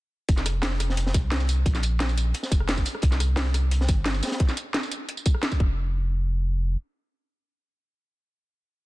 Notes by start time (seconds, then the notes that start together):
0.29 F1, kick, closed hi-hat
0.37 snare, tambourine
0.46 cross-stick, closed hi-hat, tambourine
0.62 snare, closed hi-hat
0.80 cross-stick, closed hi-hat, tambourine
0.90 snare
0.97 closed hi-hat
1.06 snare
1.14 C2, kick, closed hi-hat, tambourine
1.32 snare, closed hi-hat
1.40 tambourine
1.49 closed hi-hat, tambourine
1.66 A#1, kick, closed hi-hat
1.75 snare, closed hi-hat, tambourine
1.83 closed hi-hat, tambourine
2.00 snare, closed hi-hat
2.09 tambourine
2.18 closed hi-hat, tambourine
2.34 closed hi-hat
2.43 snare, tambourine
2.51 F1, kick, closed hi-hat, tambourine
2.60 cross-stick
2.68 snare, closed hi-hat
2.77 kick, tambourine
2.85 closed hi-hat, tambourine
2.95 cross-stick
3.02 C2, kick, closed hi-hat
3.12 snare, tambourine
3.20 cross-stick, closed hi-hat, tambourine
3.36 snare, closed hi-hat
3.54 cross-stick, closed hi-hat, tambourine
3.71 closed hi-hat
3.81 snare
3.89 G1, kick, closed hi-hat, tambourine
4.06 snare, closed hi-hat
4.14 tambourine
4.23 snare, closed hi-hat, tambourine
4.27 snare, closed hi-hat
4.32 snare, closed hi-hat
4.40 kick, closed hi-hat
4.49 snare, tambourine
4.57 closed hi-hat, tambourine
4.74 snare, closed hi-hat
4.83 tambourine
4.92 closed hi-hat, tambourine
5.09 closed hi-hat
5.17 tambourine
5.26 kick, closed hi-hat, tambourine
5.34 cross-stick
5.43 snare, closed hi-hat
5.52 kick, tambourine
5.60 F1, kick